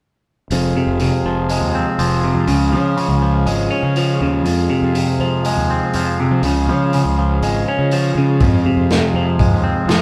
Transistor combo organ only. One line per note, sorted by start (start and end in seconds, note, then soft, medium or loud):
0.51 10.02 F3 soft
0.51 10.02 G#3 soft
0.51 2.46 C4 soft
0.51 8.36 F4 soft
0.51 10.02 G#4 soft
2.49 4.44 C#4 soft
4.46 6.41 C4 soft
6.44 8.38 C#4 soft
8.40 10.02 C4 soft
8.40 10.02 F4 soft